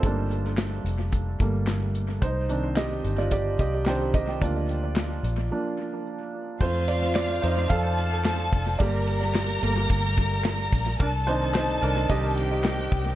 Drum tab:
CC |----------------|----------------|----------------|x---------------|
RD |----------------|----------------|----------------|--x-x-x-x-x-x-x-|
HH |x-x-x-x-x-x-x-x-|x-x-x-x-x-x-x-x-|x-x-x-x---------|--------------o-|
CP |----x-------x---|----x-------x---|----x-----------|----x-------x---|
SD |---oo-------o---|----o-------o---|----o-----------|---oo-------o---|
BD |o-------o-o-----|o-------o-o---o-|o---------------|o-------o-----o-|

CC |----------------|----------------|
RD |x-x-x-x-x-x-x-x-|x-x-x-x-x-x-x-x-|
HH |p-------------o-|p-------------o-|
CP |----x-------x---|----x-------x---|
SD |---oo-------o---|----o-------o---|
BD |o-------o-o---o-|o-------o-----o-|